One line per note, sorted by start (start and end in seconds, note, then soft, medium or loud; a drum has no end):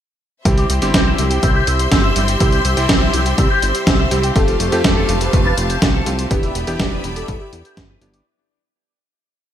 0.45 0.66 C2 loud
0.45 0.79 G3 medium
0.45 0.79 C4 medium
0.45 0.52 C4 medium
0.45 0.79 E4 medium
0.45 0.79 G4 medium
0.45 8.22 G4 medium
0.45 6.27 C5 medium
0.45 4.32 E5 medium
0.45 4.32 C6 medium
0.45 kick loud
0.45 closed hi-hat medium
0.58 0.68 G4 medium
0.58 closed hi-hat soft
0.70 0.80 C2 medium
0.70 0.80 C4 medium
0.70 closed hi-hat medium
0.82 0.92 G1 medium
0.82 2.13 G3 medium
0.82 2.13 C4 medium
0.82 2.13 E4 medium
0.82 2.13 G4 loud
0.82 0.93 C5 medium
0.82 closed hi-hat medium
0.94 1.15 C2 medium
0.94 1.06 C4 medium
0.94 kick loud
0.94 snare loud
0.94 closed hi-hat medium
1.06 1.18 E5 medium
1.18 1.39 C2 medium
1.18 1.25 C4 medium
1.18 closed hi-hat medium
1.31 1.41 G5 medium
1.31 closed hi-hat medium
1.43 1.63 C2 loud
1.43 1.54 C4 medium
1.43 kick loud
1.43 closed hi-hat medium
1.55 1.66 G4 medium
1.67 1.88 C2 loud
1.67 1.78 C4 medium
1.67 closed hi-hat medium
1.79 1.90 C5 medium
1.79 closed hi-hat medium
1.92 2.12 G1 medium
1.92 2.02 C4 medium
1.92 kick loud
1.92 snare loud
1.92 closed hi-hat medium
2.04 2.16 E5 medium
2.16 2.37 G1 medium
2.16 2.38 G3 medium
2.16 2.22 C4 medium
2.16 2.38 C4 medium
2.16 2.38 E4 medium
2.16 2.38 G4 medium
2.16 closed hi-hat medium
2.28 2.39 G5 medium
2.28 closed hi-hat medium
2.40 2.61 C2 loud
2.40 2.74 G3 medium
2.40 2.47 C4 medium
2.40 2.74 C4 medium
2.40 2.74 E4 medium
2.40 2.74 G4 medium
2.40 kick loud
2.40 closed hi-hat medium
2.52 2.63 G4 medium
2.52 closed hi-hat soft
2.65 2.75 C2 loud
2.65 2.75 C4 medium
2.65 closed hi-hat medium
2.77 2.87 C2 loud
2.77 4.08 G3 medium
2.77 4.08 C4 medium
2.77 4.08 E4 medium
2.77 4.08 G4 loud
2.77 2.88 C5 medium
2.77 closed hi-hat soft
2.89 3.10 C2 medium
2.89 3.01 C4 loud
2.89 kick loud
2.89 snare loud
2.89 closed hi-hat medium
3.01 3.13 E5 loud
3.13 3.34 C2 medium
3.13 3.20 C4 medium
3.13 closed hi-hat medium
3.26 3.36 G5 medium
3.26 closed hi-hat medium
3.38 3.48 C2 loud
3.38 3.49 C4 loud
3.38 kick loud
3.38 closed hi-hat medium
3.50 3.61 G4 loud
3.62 3.73 G1 medium
3.62 3.73 C4 medium
3.62 closed hi-hat medium
3.75 3.85 C5 medium
3.75 closed hi-hat medium
3.87 4.07 C2 loud
3.87 3.97 C4 medium
3.87 kick loud
3.87 snare loud
3.87 closed hi-hat medium
3.99 4.11 E5 loud
4.11 4.32 C2 medium
4.11 4.33 G3 medium
4.11 4.18 C4 medium
4.11 4.33 C4 medium
4.11 4.33 E4 medium
4.11 4.33 G4 medium
4.11 closed hi-hat medium
4.23 4.34 G5 medium
4.23 closed hi-hat medium
4.36 4.56 F1 loud
4.36 4.42 A3 medium
4.36 4.69 A3 medium
4.36 4.69 C4 medium
4.36 4.69 F4 medium
4.36 4.69 G4 medium
4.36 4.65 A4 loud
4.36 6.29 F5 medium
4.36 6.29 A5 medium
4.36 kick loud
4.36 closed hi-hat medium
4.48 4.58 F4 medium
4.48 closed hi-hat soft
4.60 4.70 F1 loud
4.60 4.71 A3 medium
4.60 closed hi-hat medium
4.72 4.82 F2 medium
4.72 6.03 A3 medium
4.72 6.04 C4 medium
4.72 6.03 F4 medium
4.72 6.04 G4 loud
4.72 4.83 G4 medium
4.72 5.11 A4 loud
4.72 closed hi-hat soft
4.84 5.05 F1 medium
4.84 4.96 A3 loud
4.84 kick loud
4.84 snare loud
4.84 closed hi-hat medium
4.97 5.08 A4 loud
5.09 5.29 F1 medium
5.09 5.15 A3 medium
5.09 closed hi-hat medium
5.21 5.40 B4 medium
5.21 5.32 C5 medium
5.21 closed hi-hat medium
5.33 5.54 F1 loud
5.33 5.44 A3 loud
5.33 kick loud
5.33 closed hi-hat medium
5.45 5.56 F4 loud
5.45 5.65 B4 medium
5.58 5.78 F1 loud
5.58 5.68 A3 medium
5.58 closed hi-hat medium
5.70 5.80 G4 medium
5.70 closed hi-hat soft
5.82 6.02 C2 medium
5.82 5.93 A3 medium
5.82 kick loud
5.82 snare loud
5.82 closed hi-hat medium
5.94 6.06 A4 loud
6.06 6.27 C2 medium
6.06 6.28 A3 medium
6.06 6.13 A3 medium
6.06 6.28 C4 medium
6.06 6.28 F4 medium
6.06 6.28 G4 medium
6.06 closed hi-hat medium
6.19 6.29 C5 medium
6.19 closed hi-hat medium
6.31 6.51 E1 loud
6.31 6.64 B3 medium
6.31 6.37 B3 medium
6.31 6.64 D4 medium
6.31 6.64 E4 medium
6.31 6.60 G4 loud
6.31 6.64 G4 medium
6.31 8.24 D5 medium
6.31 8.24 E5 medium
6.31 8.24 B5 medium
6.31 kick loud
6.31 closed hi-hat medium
6.43 6.54 E4 medium
6.43 closed hi-hat soft
6.55 6.65 E1 loud
6.55 6.66 B3 medium
6.55 closed hi-hat medium
6.67 6.78 E1 loud
6.67 7.99 B3 medium
6.67 7.99 D4 medium
6.67 7.99 E4 medium
6.67 7.06 G4 loud
6.67 7.99 G4 loud
6.67 6.78 G4 medium
6.67 closed hi-hat soft
6.80 7.00 E1 medium
6.80 6.91 B3 medium
6.80 kick loud
6.80 snare loud
6.80 closed hi-hat medium
6.92 7.03 B4 loud
7.04 7.24 E1 medium
7.04 7.10 B3 medium
7.04 closed hi-hat medium
7.16 7.35 A4 medium
7.16 7.27 D5 medium
7.16 closed hi-hat soft
7.28 7.39 E1 loud
7.28 7.39 B3 loud
7.28 kick loud
7.28 closed hi-hat medium
7.41 7.51 E4 loud
7.41 7.60 G4 medium
7.53 7.63 E2 medium
7.53 7.63 B3 medium
7.53 closed hi-hat medium
7.65 7.75 G4 medium
7.65 closed hi-hat soft
7.77 7.97 G1 medium
7.77 7.88 B3 medium
7.77 kick loud
7.77 snare loud
7.77 closed hi-hat medium
7.90 8.01 B4 loud
8.01 8.22 G1 loud
8.01 8.23 B3 medium
8.01 8.08 B3 medium
8.01 8.23 D4 medium
8.01 8.23 E4 medium
8.01 8.23 G4 medium
8.01 closed hi-hat medium
8.14 8.24 D5 medium
8.14 closed hi-hat soft